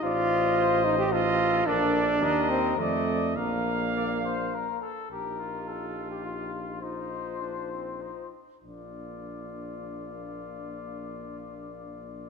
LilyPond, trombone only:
\new Staff \with { instrumentName = "Trombone" } { \time 3/4 \key bes \major \tempo 4 = 103 f'4. ees'16 g'16 f'4 | d'4. c'8 a4 | bes2~ bes8 r8 | ees'2.~ |
ees'2~ ees'8 r8 | bes2.~ | bes2. | }